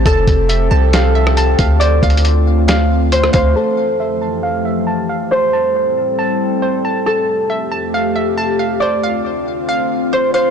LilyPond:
<<
  \new Staff \with { instrumentName = "Synth pluck" } { \time 4/4 \key f \major \tempo 4 = 137 a''4 e''8 a''8 f''8 e''8 a''8 f''8 | c''8 f''4. f''4 c''8 f''8 | a''4 e''8 a''8 f''8 e''8 a''8 f''8 | c''8 a''4. a''4 c''8 a''8 |
a''4 e''8 a''8 f''8 e''8 a''8 f''8 | c''8 f''4. f''4 c''8 f''8 | }
  \new Staff \with { instrumentName = "Harp" } { \time 4/4 \key f \major a'1 | d''2. c''8 c''8 | a'1 | c''1 |
a'1 | d''2. c''8 c''8 | }
  \new Staff \with { instrumentName = "Ambient pad" } { \time 4/4 \key f \major <f c' g' a'>1 | <d a c' f'>1 | <f, e f a g'>1 | <a, g c' a'>1 |
<f, c a g'>1 | <d, d c' f'>1 | }
  \new Staff \with { instrumentName = "808-style bass" } { \clef bass \time 4/4 \key f \major f,,8 f,,4 c,2 d,8~ | d,8 d,2. d,8 | r1 | r1 |
r1 | r1 | }
  \new DrumStaff \with { instrumentName = "Drums" } \drummode { \time 4/4 <hh bd>8 <hh bd>8 hh4 <hh sn>8. ss16 hh8 <hh bd>8 | \tuplet 3/2 { hh16 r16 r16 <hh bd>16 hh16 hh16 } hh4 <hh sn>4 hh16 ss16 <hh bd>8 | r4 r4 r4 r4 | r4 r4 r4 r4 |
r4 r4 r4 r4 | r4 r4 r4 r4 | }
>>